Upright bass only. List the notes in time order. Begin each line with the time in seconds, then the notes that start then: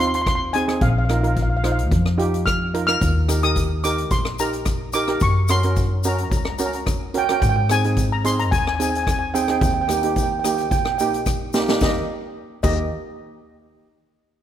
Already playing: D#2
0.81 A#1
1.92 F2
3.01 D#2
4.11 A#1
5.21 F#2
6.31 C#2
7.42 G#2
8.52 D#2
9.62 D#2
10.71 A#1
11.81 D#2
12.63 D#2